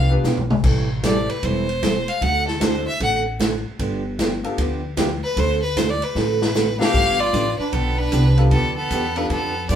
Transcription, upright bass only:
0.00 0.18 C2 medium
0.24 0.58 B1 medium
0.64 1.27 A1 medium
1.43 2.06 E1 medium
2.21 2.85 D2 medium
3.00 3.64 A1 medium
3.79 4.42 G1 medium
4.58 5.21 D2 medium
5.37 6.00 D2 loud
6.15 6.78 A1 medium
6.94 7.32 G1 medium
7.33 7.57 A1 medium
7.59 muted upright bass stroke soft
7.73 8.11 B1 medium
8.12 8.50 C2 medium
8.51 8.90 D2 medium
8.91 9.29 E2 loud
9.30 9.68 F2 medium
9.69 9.75 G2 medium

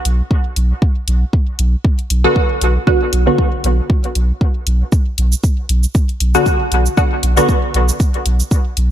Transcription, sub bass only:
0.05 0.22 B1 medium
0.56 0.73 B1 medium
1.08 1.24 B1 loud
1.59 1.76 B1 loud
2.10 2.27 B1 medium
2.61 2.78 B1 medium
3.13 3.29 B1 loud
3.64 3.81 B1 loud
4.15 4.32 B1 medium
4.67 4.83 B1 medium
5.18 5.35 B1 loud
5.69 5.86 B1 loud
6.20 6.37 B1 medium
6.72 6.88 B1 medium
7.23 7.40 B1 loud
7.74 7.91 B1 loud
8.26 8.42 B1 medium
8.77 8.91 B1 medium

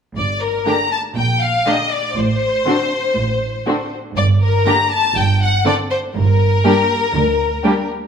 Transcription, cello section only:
0.16 0.56 G2 soft
1.17 1.56 A#2 soft
2.17 2.57 A2 soft
3.17 3.56 A2 medium
4.17 4.56 G2 medium
5.16 5.56 G2 medium
6.15 6.54 G2 medium
7.15 7.54 D2 medium

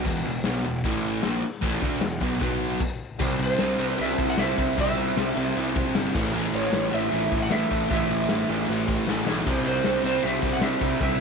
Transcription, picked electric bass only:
0.05 0.23 E1 medium
0.24 0.42 E1 medium
0.44 0.62 B1 medium
0.63 0.82 E1 medium
0.84 1.20 A1 medium
1.23 1.41 A#1 loud
1.43 muted picked electric bass stroke soft
1.62 1.81 A1 medium
1.82 2.00 D2 loud
2.01 2.19 E1 medium
2.21 2.40 B1 medium
2.41 2.77 B1 medium
3.20 3.33 C2 medium
3.39 3.53 C2 loud
3.60 3.73 C2 medium
3.79 3.93 C2 loud
3.99 4.13 C2 loud
4.19 4.32 C2 medium
4.38 4.52 C2 loud
4.57 4.71 C2 medium
4.78 4.91 C2 loud
4.97 5.11 C2 medium
5.17 5.30 C2 loud
5.36 5.50 C2 loud
5.57 5.84 C2 loud
5.95 6.09 G1 medium
6.15 6.28 A1 loud
6.34 6.48 A1 medium
6.53 6.67 A1 medium
6.74 6.87 A1 loud
6.93 7.07 A1 loud
7.12 7.26 A1 loud
7.32 7.45 A1 loud
7.50 7.64 A1 medium
7.71 7.85 A1 loud
7.90 8.04 A1 medium
8.10 8.24 A1 loud
8.29 8.43 A1 medium
8.49 8.63 A1 medium
8.69 8.96 A1 medium
9.09 9.22 A1 loud
9.26 9.40 B1 loud
9.46 9.60 C2 loud
9.65 9.79 C2 loud
9.85 9.99 C2 medium
10.04 10.18 C2 medium
10.23 10.37 C2 medium
10.43 10.57 C2 medium
10.60 10.75 C2 medium
10.81 10.95 C2 medium
11.00 11.14 C2 medium

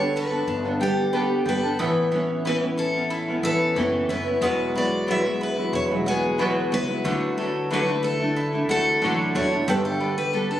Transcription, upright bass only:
0.00 0.44 G1 loud
0.47 1.42 G1 loud
1.46 1.76 G1 medium
1.80 3.40 A1 loud
3.43 3.74 A1 medium
3.76 4.06 F#1 medium
4.09 4.39 F#1 medium
4.41 5.69 E1 loud
5.73 6.68 E1 medium
6.72 7.02 C#2 medium
7.04 8.65 D2 loud
8.69 8.99 D2 medium
9.02 9.32 A1 medium
9.35 9.65 E1 medium
9.68 10.60 G1 loud

